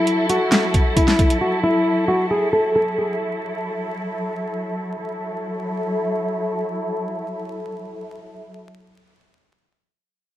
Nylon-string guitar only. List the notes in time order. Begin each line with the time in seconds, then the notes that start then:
Already playing: E4
0.30 F#4
0.97 E4
1.41 F#4
1.64 E4
2.08 F#4
2.31 G#4
2.53 A4
2.76 A4
2.98 G#4